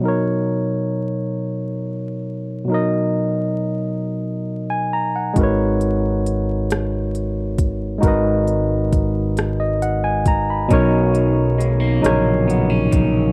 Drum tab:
HH |------|------|xxxxxx|xxxxxx|
SD |------|------|---r--|---r--|
BD |------|------|o----o|o-o--o|

HH |xxxxxx|
SD |---r--|
BD |o----o|